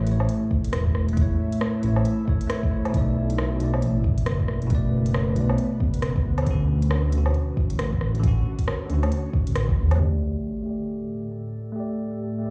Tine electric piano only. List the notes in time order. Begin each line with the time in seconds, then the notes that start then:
Already playing: A3 E4 C#5
0.04 A3
0.08 E4
0.12 C#5
1.13 A3 E4
1.22 C#5
1.82 A3 E4
1.86 C#5
2.26 A3 E4 C#5
2.47 A3 E4 C#5
2.70 A3 E4 C#5
2.89 B2
2.93 A3 D5
3.56 B2
3.60 A3 D5
4.67 B2 A3
4.75 D5
5.33 B2 A3
5.41 D5
6.43 D3
6.47 C#4 F#4
7.09 D3 C#4
7.18 F#4
8.19 D3
8.23 C#4
8.27 F#4
8.85 D3 C#4
8.94 F#4
9.95 A3
9.99 G4
10.03 D5
10.62 A3 G4
10.70 D5
11.72 A3 G4
11.80 D5
12.39 A3 G4
12.46 D5